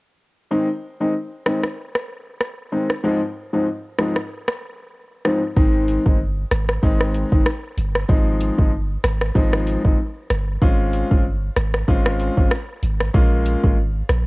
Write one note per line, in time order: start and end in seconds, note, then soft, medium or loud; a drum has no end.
0.51 0.66 D#3 medium
0.51 0.66 G#3 medium
0.51 0.66 C4 medium
0.51 0.66 D#4 loud
1.00 1.12 D#3 medium
1.00 1.12 G#3 medium
1.00 1.12 C4 medium
1.00 1.12 D#4 medium
1.46 1.60 D#3 medium
1.46 1.60 G#3 medium
1.46 1.61 C4 medium
1.46 1.61 D#4 medium
1.46 cross-stick medium
1.63 cross-stick medium
1.95 cross-stick medium
2.41 cross-stick medium
2.72 2.87 D#3 medium
2.72 2.87 G#3 medium
2.72 2.87 C4 medium
2.72 2.87 D#4 medium
2.90 cross-stick medium
3.04 3.18 G#2 medium
3.04 3.18 F3 medium
3.04 3.18 G#3 medium
3.04 3.18 C4 medium
3.04 3.19 D#4 medium
3.53 3.64 G#2 medium
3.53 3.64 F3 medium
3.53 3.65 G#3 medium
3.53 3.65 C4 medium
3.53 3.65 D#4 medium
3.98 4.13 G#2 medium
3.98 4.13 F3 medium
3.98 4.13 G#3 medium
3.98 4.13 C4 medium
3.98 4.13 D#4 medium
3.98 cross-stick medium
4.16 cross-stick medium
4.48 cross-stick medium
5.25 5.39 G#2 medium
5.25 5.39 F3 medium
5.25 5.39 G#3 medium
5.25 5.40 C4 medium
5.25 5.40 D#4 medium
5.25 cross-stick medium
5.56 5.98 G#1 loud
5.56 6.01 D#3 medium
5.56 6.01 G#3 medium
5.56 6.02 C4 medium
5.56 6.02 D#4 loud
5.56 kick loud
5.88 closed hi-hat medium
6.05 6.44 G1 medium
6.05 6.17 D#3 medium
6.05 6.17 G#3 medium
6.05 6.17 C4 medium
6.05 6.17 D#4 medium
6.05 kick loud
6.51 6.78 G#1 loud
6.51 cross-stick medium
6.51 closed hi-hat medium
6.69 cross-stick medium
6.83 7.24 G#1 loud
6.83 7.28 D#3 medium
6.83 7.28 G#3 medium
6.83 7.28 C4 medium
6.83 7.28 D#4 loud
6.83 kick medium
7.00 cross-stick medium
7.14 closed hi-hat medium
7.32 7.44 G1 medium
7.32 7.43 D#3 medium
7.32 7.43 G#3 medium
7.32 7.44 C4 medium
7.32 7.44 D#4 medium
7.32 kick loud
7.46 cross-stick loud
7.78 8.04 G1 medium
7.78 closed hi-hat medium
7.95 cross-stick medium
8.09 8.51 G#1 loud
8.09 8.54 F3 medium
8.09 8.54 G#3 medium
8.09 8.54 C4 medium
8.09 8.54 D#4 loud
8.09 kick loud
8.41 closed hi-hat medium
8.58 8.97 G1 medium
8.58 8.70 F3 medium
8.58 8.70 G#3 medium
8.58 8.70 C4 medium
8.58 8.70 D#4 medium
8.58 kick loud
9.04 9.30 G#1 loud
9.04 cross-stick medium
9.04 closed hi-hat medium
9.21 cross-stick medium
9.35 9.77 G#1 medium
9.35 9.80 F3 medium
9.35 9.80 G#3 medium
9.35 9.80 C4 medium
9.35 9.81 D#4 loud
9.35 kick medium
9.53 cross-stick medium
9.67 closed hi-hat medium
9.84 9.96 G1 loud
9.84 9.96 F3 medium
9.84 9.96 G#3 medium
9.84 9.96 C4 medium
9.84 9.96 D#4 medium
9.84 kick medium
10.30 10.57 G1 medium
10.30 cross-stick medium
10.30 closed hi-hat medium
10.62 11.03 G#1 loud
10.62 11.07 G#3 medium
10.62 11.07 C4 medium
10.62 11.07 C#4 medium
10.62 11.07 F4 loud
10.62 kick loud
10.93 closed hi-hat medium
11.11 11.49 G1 medium
11.11 11.22 G#3 medium
11.11 11.22 C4 medium
11.11 11.22 C#4 medium
11.11 11.23 F4 medium
11.11 kick medium
11.56 11.83 G#1 medium
11.56 cross-stick medium
11.56 closed hi-hat medium
11.74 cross-stick medium
11.88 12.29 G#1 medium
11.88 12.33 G#3 medium
11.88 12.33 C4 medium
11.88 12.33 C#4 medium
11.88 12.33 F4 loud
11.88 kick medium
12.06 cross-stick loud
12.20 closed hi-hat medium
12.37 12.49 G1 medium
12.37 12.49 G#3 medium
12.37 12.49 C4 medium
12.37 12.49 C#4 medium
12.37 12.49 F4 medium
12.37 kick medium
12.51 cross-stick loud
12.83 13.09 G#1 medium
12.83 closed hi-hat medium
13.01 cross-stick medium
13.14 13.56 A#1 loud
13.14 13.59 G#3 medium
13.14 13.59 A#3 medium
13.14 13.59 C#4 medium
13.14 13.60 F4 loud
13.14 kick loud
13.46 closed hi-hat medium
13.63 14.02 G#1 medium
13.63 13.75 G#3 medium
13.63 13.75 A#3 medium
13.63 13.75 C#4 medium
13.63 13.75 F4 medium
13.63 kick loud
14.09 14.27 A#1 loud
14.09 cross-stick medium
14.09 closed hi-hat medium